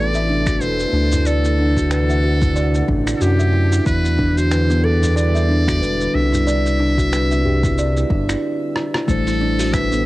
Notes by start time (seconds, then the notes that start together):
Already playing: A1 C3 E3 A3 E4 A4 D5
0.14 E5, shaker
0.29 D4
0.46 F#4, finger snap, kick, shaker
0.60 E1 B4 C5, shaker
0.79 B4, shaker
0.93 D2 D4
1.12 E4, udu, shaker
1.26 C3 D3 A3 D4 A4 D5 F#5, shaker
1.44 E4, shaker
1.59 D4
1.77 F#4, kick, shaker
1.91 A4 B4, finger snap, shaker
2.10 E5, shaker
2.24 F#4
2.42 E4, kick, udu, shaker
2.56 D5, shaker
2.74 E4, shaker
2.88 A1 D4, kick, udu
3.07 E4, finger snap, shaker
3.16 A4
3.21 F#2 F#4 G4, shaker
3.39 E5, shaker
3.53 E4
3.72 E4, shaker
3.85 E2 B2 D3 G3 E4 B4, kick, shaker
4.04 E4, shaker
4.18 D4, kick
4.37 F#4 C5, shaker
4.51 B4, finger snap, shaker
4.70 B3, shaker
4.84 A4 D5
5.02 E4, udu, shaker
5.16 D5, shaker
5.35 E5, shaker
5.49 D4
5.68 F#4, finger snap, kick, shaker
5.82 E1 B4, shaker
6.00 B4, shaker
6.14 C2 D4 E5
6.32 E4, udu, shaker
6.47 C4 D5, shaker
6.66 E4, shaker
6.79 D4
6.98 F#4, kick, shaker
7.13 B4, finger snap, shaker
7.31 E5, shaker
7.45 G4, udu
7.63 E4, kick, udu, shaker
7.78 D5, shaker
7.97 E4, shaker
8.10 G1 D4, kick, udu
8.29 E4, finger snap, shaker
8.76 cross-stick
8.94 cross-stick
9.06 A1 C3 E3 G3 A3 D4 E4 A4 C5, kick, shaker
9.27 E4, open hi-hat, shaker
9.41 D4
9.59 F#4, open hi-hat, shaker
9.73 B4 E5, finger snap, kick, shaker
9.92 B3, shaker